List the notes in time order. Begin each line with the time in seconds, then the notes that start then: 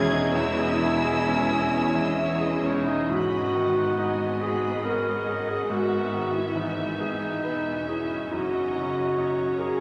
Already playing: E1 E2 D#3 E3 C#4 E4 G#4 C#5 G#6
0.11 D#4 G#4 D#5
0.32 E2 E4 C#5 G#5 E6
0.58 G#4 D#5
0.82 E4 C#5
1.04 G#4 D#5
1.28 C#4 E4 C#5
1.50 G#4 D#5
1.73 C#4 E4 C#5
1.95 E3 G#4 D#5
2.18 E4 C#5
2.41 G#4 D#5
2.64 C#4 D#4 E4 C#5
2.85 D#4 G#4 D#5
3.09 G#1 G#2 B3 F#4 D#5 B5
3.54 D#3 F#5
3.99 D#4 D#5 G#5
4.41 G#4 B5
4.84 B3 C#4 A#4 F#5
5.28 G#4
5.47 G#4
5.69 G#1 G#2 B3 F#4
5.74 E5
6.13 D#3
6.34 E4
6.55 E3 D#4 G#5
7.00 G#4
7.44 E1 E2 B3 B4 E5
7.88 C#4 E4 G#4
8.31 F#1 F#2 F#4 D#5 A#5
8.75 C#3
9.17 D#4 C#5 A#5
9.58 G#4 A#4